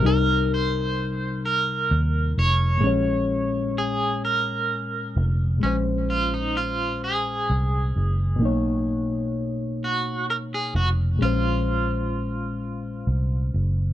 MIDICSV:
0, 0, Header, 1, 4, 480
1, 0, Start_track
1, 0, Tempo, 930233
1, 15, Time_signature, 6, 3, 24, 8
1, 7188, End_track
2, 0, Start_track
2, 0, Title_t, "Clean electric guitar"
2, 0, Program_c, 0, 27
2, 32, Note_on_c, 0, 70, 97
2, 271, Note_off_c, 0, 70, 0
2, 279, Note_on_c, 0, 72, 105
2, 749, Note_off_c, 0, 72, 0
2, 751, Note_on_c, 0, 70, 82
2, 1230, Note_off_c, 0, 70, 0
2, 1233, Note_on_c, 0, 73, 102
2, 1949, Note_off_c, 0, 73, 0
2, 1951, Note_on_c, 0, 68, 74
2, 2189, Note_off_c, 0, 68, 0
2, 2191, Note_on_c, 0, 70, 77
2, 2703, Note_off_c, 0, 70, 0
2, 2905, Note_on_c, 0, 61, 81
2, 2969, Note_off_c, 0, 61, 0
2, 3147, Note_on_c, 0, 65, 84
2, 3265, Note_off_c, 0, 65, 0
2, 3270, Note_on_c, 0, 63, 76
2, 3386, Note_off_c, 0, 63, 0
2, 3389, Note_on_c, 0, 65, 83
2, 3630, Note_off_c, 0, 65, 0
2, 3633, Note_on_c, 0, 68, 82
2, 4386, Note_off_c, 0, 68, 0
2, 4386, Note_on_c, 0, 66, 82
2, 4804, Note_off_c, 0, 66, 0
2, 5078, Note_on_c, 0, 66, 86
2, 5291, Note_off_c, 0, 66, 0
2, 5316, Note_on_c, 0, 70, 88
2, 5346, Note_off_c, 0, 70, 0
2, 5440, Note_on_c, 0, 68, 91
2, 5540, Note_off_c, 0, 68, 0
2, 5553, Note_on_c, 0, 66, 97
2, 5615, Note_off_c, 0, 66, 0
2, 5791, Note_on_c, 0, 65, 81
2, 6963, Note_off_c, 0, 65, 0
2, 7188, End_track
3, 0, Start_track
3, 0, Title_t, "Reed electric piano"
3, 0, Program_c, 1, 4
3, 0, Control_c, 1, 64, 127
3, 0, Note_on_c, 1, 48, 73
3, 9, Note_on_c, 1, 55, 67
3, 22, Control_c, 1, 64, 0
3, 24, Note_on_c, 1, 63, 63
3, 40, Note_on_c, 1, 70, 77
3, 121, Control_c, 1, 64, 127
3, 1423, Note_off_c, 1, 48, 0
3, 1432, Note_off_c, 1, 55, 0
3, 1432, Note_on_c, 1, 46, 66
3, 1439, Note_off_c, 1, 63, 0
3, 1447, Note_off_c, 1, 70, 0
3, 1448, Note_on_c, 1, 56, 65
3, 1461, Control_c, 1, 64, 0
3, 1464, Note_on_c, 1, 61, 69
3, 1480, Note_on_c, 1, 73, 77
3, 1566, Control_c, 1, 64, 127
3, 2863, Note_off_c, 1, 46, 0
3, 2871, Note_off_c, 1, 56, 0
3, 2873, Note_on_c, 1, 46, 56
3, 2879, Note_off_c, 1, 61, 0
3, 2887, Note_off_c, 1, 73, 0
3, 2888, Note_on_c, 1, 56, 56
3, 2902, Control_c, 1, 64, 0
3, 2904, Note_on_c, 1, 61, 56
3, 2920, Note_on_c, 1, 72, 62
3, 2992, Control_c, 1, 64, 127
3, 4303, Note_off_c, 1, 46, 0
3, 4311, Note_off_c, 1, 56, 0
3, 4314, Note_on_c, 1, 47, 74
3, 4319, Note_off_c, 1, 61, 0
3, 4327, Note_off_c, 1, 72, 0
3, 4328, Note_on_c, 1, 58, 68
3, 4344, Control_c, 1, 64, 0
3, 4345, Note_on_c, 1, 63, 67
3, 4362, Note_on_c, 1, 73, 81
3, 4427, Control_c, 1, 64, 127
3, 5744, Note_off_c, 1, 47, 0
3, 5751, Note_off_c, 1, 58, 0
3, 5757, Note_on_c, 1, 46, 57
3, 5760, Note_off_c, 1, 63, 0
3, 5768, Note_off_c, 1, 73, 0
3, 5772, Note_on_c, 1, 56, 60
3, 5782, Control_c, 1, 64, 0
3, 5788, Note_on_c, 1, 61, 59
3, 5804, Note_on_c, 1, 72, 65
3, 5876, Control_c, 1, 64, 127
3, 7186, Note_off_c, 1, 46, 0
3, 7188, Note_off_c, 1, 56, 0
3, 7188, Note_off_c, 1, 61, 0
3, 7188, Note_off_c, 1, 72, 0
3, 7188, End_track
4, 0, Start_track
4, 0, Title_t, "Fingered electric bass"
4, 0, Program_c, 2, 33
4, 25, Note_on_c, 2, 36, 107
4, 959, Note_off_c, 2, 36, 0
4, 987, Note_on_c, 2, 39, 80
4, 1201, Note_off_c, 2, 39, 0
4, 1226, Note_on_c, 2, 29, 84
4, 1467, Note_off_c, 2, 29, 0
4, 1467, Note_on_c, 2, 34, 106
4, 2641, Note_off_c, 2, 34, 0
4, 2665, Note_on_c, 2, 29, 88
4, 2880, Note_off_c, 2, 29, 0
4, 2904, Note_on_c, 2, 34, 100
4, 3839, Note_off_c, 2, 34, 0
4, 3869, Note_on_c, 2, 36, 69
4, 4081, Note_off_c, 2, 36, 0
4, 4108, Note_on_c, 2, 30, 79
4, 4347, Note_off_c, 2, 30, 0
4, 4347, Note_on_c, 2, 35, 109
4, 5521, Note_off_c, 2, 35, 0
4, 5546, Note_on_c, 2, 29, 96
4, 5760, Note_off_c, 2, 29, 0
4, 5785, Note_on_c, 2, 34, 98
4, 6720, Note_off_c, 2, 34, 0
4, 6744, Note_on_c, 2, 36, 75
4, 6959, Note_off_c, 2, 36, 0
4, 6987, Note_on_c, 2, 30, 76
4, 7188, Note_off_c, 2, 30, 0
4, 7188, End_track
0, 0, End_of_file